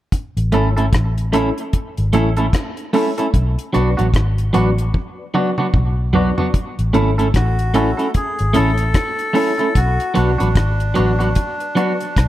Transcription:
0.12 kick, closed hi-hat
0.37 fingered electric bass A1, closed hi-hat
0.52 fingered electric bass G#1, clean electric guitar A3 C#4 E4 A4, reed electric piano C#4 E4 A4 C#5, closed hi-hat
0.77 clean electric guitar A3 C#4 E4 A4, closed hi-hat
0.93 fingered electric bass A1, kick, cross-stick, closed hi-hat
1.18 closed hi-hat
1.32 clean electric guitar A3 C#4 E4 A4, reed electric piano C#4 E4 A4 C#5, closed hi-hat
1.58 closed hi-hat
1.73 kick, closed hi-hat
1.97 fingered electric bass G#1, reed electric piano A4 C#5, closed hi-hat
2.13 fingered electric bass A1, clean electric guitar A3 C#4 E4 A4, reed electric piano C#4 E4 A4 C#5, closed hi-hat
2.37 clean electric guitar A3 C#4 E4 A4, closed hi-hat
2.53 kick, cross-stick, closed hi-hat
2.77 closed hi-hat
2.93 clean electric guitar A3 C#4 E4 A4, reed electric piano C#4 E4 A4 C#5, open hi-hat
3.17 clean electric guitar A3 C#4 E4 A4, reed electric piano C#4 E4 A4 C#5, closed hi-hat
3.34 fingered electric bass B1, kick, closed hi-hat
3.59 closed hi-hat
3.73 fingered electric bass B1, clean electric guitar F#3 B3 D4 F#4, reed electric piano D4 F#4 B4 D5, closed hi-hat
3.97 fingered electric bass A1, clean electric guitar F#3 B3 D4 F#4, closed hi-hat
4.14 fingered electric bass G#1, kick, cross-stick, closed hi-hat
4.38 closed hi-hat
4.53 fingered electric bass A1, clean electric guitar F#3 B3 D4 F#4, reed electric piano D4 F#4 B4 D5, closed hi-hat
4.78 closed hi-hat
4.94 kick, high tom
5.19 reed electric piano B4 D5
5.34 clean electric guitar F#3 B3 D4 F#4, reed electric piano D4 F#4 B4 D5, mid tom
5.58 clean electric guitar F#3 B3 D4 F#4, mid tom
5.74 fingered electric bass B1, kick, mid tom
6.13 clean electric guitar F#3 B3 D4 F#4, reed electric piano D4 F#4 B4 D5, floor tom
6.38 clean electric guitar F#3 B3 D4 F#4, reed electric piano D4 F#4 B4, floor tom
6.54 kick, closed hi-hat
6.79 fingered electric bass A1, closed hi-hat
6.93 fingered electric bass G#1, clean electric guitar A3 C#4 E4 A4, reed electric piano C#4 E4 A4 C#5, closed hi-hat
7.18 clean electric guitar A3 C#4 E4 A4, closed hi-hat
7.34 fingered electric bass A1, melodica F#4, kick, cross-stick, closed hi-hat
7.59 closed hi-hat
7.74 clean electric guitar A3 C#4 E4 A4, reed electric piano C#4 E4 A4 C#5, closed hi-hat
7.97 clean electric guitar A3 C#4 E4 A4, closed hi-hat
8.14 melodica G#4, kick, closed hi-hat
8.39 fingered electric bass G#1, reed electric piano A4 C#5, closed hi-hat
8.53 fingered electric bass A1, clean electric guitar A3 C#4 E4 A4, reed electric piano C#4 E4 A4 C#5, melodica A4, closed hi-hat
8.78 closed hi-hat
8.94 kick, cross-stick, closed hi-hat
9.19 closed hi-hat
9.33 clean electric guitar A3 C#4 E4 A4, reed electric piano C#4 E4 A4 C#5, open hi-hat
9.58 clean electric guitar A3 C#4 E4 A4, reed electric piano C#4 A4 C#5, closed hi-hat
9.75 fingered electric bass B1, melodica F#4, kick, closed hi-hat
10.00 closed hi-hat
10.14 fingered electric bass B1, clean electric guitar F#3 B3 D4 F#4, reed electric piano D4 F#4 B4 D5, melodica D4, closed hi-hat
10.38 fingered electric bass A1, clean electric guitar F#3 B3 D4 F#4, closed hi-hat
10.55 fingered electric bass G#1, kick, cross-stick, closed hi-hat
10.80 closed hi-hat
10.94 fingered electric bass A1, clean electric guitar F#3 B3 D4 F#4, reed electric piano D4 F#4 B4 D5, closed hi-hat
11.19 clean electric guitar F#3 B3 D4 F#4, closed hi-hat
11.35 kick, closed hi-hat
11.60 reed electric piano B4 D5, closed hi-hat
11.75 clean electric guitar F#3 B3 D4 F#4, reed electric piano D4 F#4 B4 D5, closed hi-hat
12.00 closed hi-hat
12.16 fingered electric bass B1, kick, cross-stick, closed hi-hat

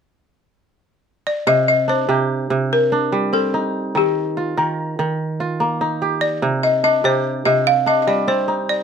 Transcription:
1.27 balafon D5
1.47 kora C3, balafon D#5
1.68 balafon D#5
1.88 kora D4, balafon C5
2.09 kora C3 G4
2.50 kora C3
2.73 balafon A#4
2.92 kora D4
3.12 kora G3
3.33 kora C4, balafon A4
3.54 kora D#4
3.95 kora D#3, balafon G4
4.37 kora F4
4.57 kora D#3 A#4
4.99 kora D#3
5.40 kora F4
5.60 kora A#3
5.81 kora D#4
6.02 kora G4
6.21 balafon D5
6.42 kora C3
6.63 balafon D#5
6.84 kora D4, balafon D#5
7.04 kora C3 G4, balafon C5
7.45 kora C3, balafon D#5
7.67 balafon F5
7.86 kora D4, balafon D#5
8.02 balafon D#5
8.07 kora G3, balafon D5
8.28 kora C4, balafon C5
8.48 kora D#4
8.69 balafon D5

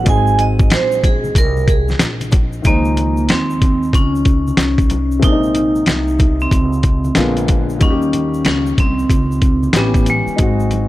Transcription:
0.04 upright bass G#1, upright piano F#3 G#3 C4, kick, closed hi-hat, shaker
0.08 upright piano D#4 G#4, vibraphone G#5
0.27 shaker
0.39 vibraphone D#5, closed hi-hat, shaker
0.59 kick, shaker
0.70 upright bass A#1, vibraphone C5, snare, closed hi-hat, shaker
0.92 shaker
1.04 vibraphone G#4, kick, closed hi-hat, high conga, low conga, shaker
1.24 high conga, shaker
1.35 upright bass C2, vibraphone A#4, kick, closed hi-hat, shaker
1.57 high conga, shaker
1.68 vibraphone G#4, kick, closed hi-hat, shaker
1.88 snare, high conga, shaker
1.99 upright bass A#1, snare, closed hi-hat, shaker
2.21 closed hi-hat, high conga, shaker
2.32 kick, closed hi-hat, low conga, shaker
2.53 shaker
2.62 upright bass C#2, upright piano D#3 F3 G#3, kick, closed hi-hat, shaker
2.66 vibraphone A#3, upright piano D#4 C5
2.85 shaker
2.97 closed hi-hat, low conga, shaker
3.17 shaker
3.29 upright bass D#2, vibraphone C4, snare, closed hi-hat, shaker
3.50 shaker
3.62 kick, closed hi-hat, high conga, low conga, shaker
3.83 shaker
3.93 upright bass C#2, vibraphone C#4, kick, closed hi-hat, shaker
4.15 shaker
4.25 kick, closed hi-hat, shaker
4.47 high conga, shaker
4.57 upright bass C2, snare, closed hi-hat, shaker
4.78 kick, closed hi-hat, shaker
4.90 closed hi-hat, low conga, shaker
5.12 shaker
5.19 upright bass A#1, upright piano C3 G#3 A#3, kick, closed hi-hat, shaker
5.24 upright piano C4 D4, vibraphone D#4
5.32 upright piano D#4
5.43 shaker
5.55 closed hi-hat, low conga, shaker
5.75 shaker
5.86 upright bass C2, snare, closed hi-hat, shaker
6.08 shaker
6.19 kick, closed hi-hat, high conga, low conga, shaker
6.40 vibraphone C4, shaker
6.51 upright bass C#2, kick, closed hi-hat, shaker
6.73 shaker
6.83 kick, closed hi-hat, shaker
7.04 high conga, shaker
7.15 upright bass A#1, upright piano D3 G#3 A#3 B3 F4, snare, closed hi-hat, shaker
7.37 closed hi-hat, shaker
7.48 kick, closed hi-hat, low conga, shaker
7.70 shaker
7.78 upright bass D#2, upright piano D#3 G3 A#3, kick, closed hi-hat, shaker
7.82 vibraphone C#4, upright piano D#4 F#4
7.90 upright piano G4
8.02 shaker
8.13 closed hi-hat, low conga, shaker
8.34 shaker
8.45 upright bass C#2, vibraphone C#4, snare, closed hi-hat, shaker
8.66 shaker
8.78 upright bass C2, vibraphone C4, kick, closed hi-hat, high conga, low conga, shaker
8.99 shaker
9.09 upright bass C#2, kick, closed hi-hat, shaker
9.32 shaker
9.42 kick, closed hi-hat, shaker
9.63 high conga, shaker
9.73 upright bass A1, upright piano E3 B3 C#4 G4, snare, closed hi-hat, shaker
9.77 vibraphone B3
9.94 kick, closed hi-hat, shaker
10.06 vibraphone G#3, closed hi-hat, low conga, shaker
10.27 muted upright bass stroke, shaker
10.36 upright bass G#1, upright piano F#3 G#3 D#4, kick, closed hi-hat, shaker
10.41 upright piano C4 F#4
10.60 shaker
10.71 closed hi-hat, low conga, shaker

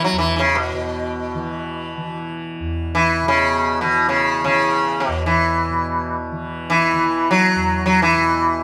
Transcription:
Already playing: tanpura E2 B2 E3
0.04 sitar F#3
0.12 tanpura E2
0.18 sitar E3
0.36 sitar C#3 E3
0.55 sitar B2
0.73 tanpura B2
1.34 tanpura E3
1.97 tanpura E3
2.60 tanpura E2
2.95 sitar E3
3.23 tanpura B2
3.28 sitar C#3
3.81 sitar B2, tanpura E3
4.09 sitar C#3
4.44 sitar C#3, tanpura E3
5.00 sitar B2
5.08 tanpura E2
5.26 sitar E3
5.69 tanpura B2
6.32 tanpura E3
6.70 sitar E3
6.93 tanpura E3
7.31 sitar F#3
7.55 tanpura E2
7.86 sitar F#3
8.02 sitar E3
8.17 tanpura B2

